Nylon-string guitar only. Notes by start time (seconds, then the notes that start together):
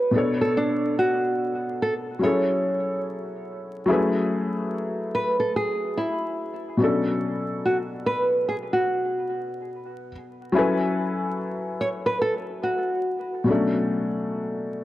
Already playing: B4
0.41 A4
0.57 D4
0.99 F#4
1.82 A4
2.23 C#5
5.15 B4
5.40 A4
5.56 G#4
5.97 E4
7.65 F#4
8.06 B4
8.49 G#4
8.73 F#4
11.81 C#5
12.06 B4
12.22 A4
12.63 F#4